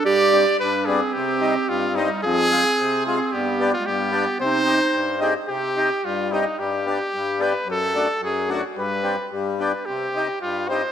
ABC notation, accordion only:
X:1
M:2/4
L:1/8
Q:1/4=110
K:Cm
V:1 name="Accordion"
z [G,CD] z [G,=B,D] | z [G,CE] z [G,CE] | z [A,CF] z [A,CF] | z [=B,DG] z [B,DG] |
z [CEG] z [CEG] | z [CEG] z [CEG] | z [=B,DG] z [B,DG] | z [=A,D^F] z [A,DF] |
z [CDG] z [=B,DG] | z [CEG] z [CEG] |]
V:2 name="Accordion" clef=bass
G,,2 G,,2 | C,2 G,,2 | F,,2 C,2 | G,,2 G,,2 |
C,2 G,,2 | C,2 G,,2 | G,,2 G,,2 | ^F,,2 F,,2 |
G,,2 G,,2 | C,2 G,,2 |]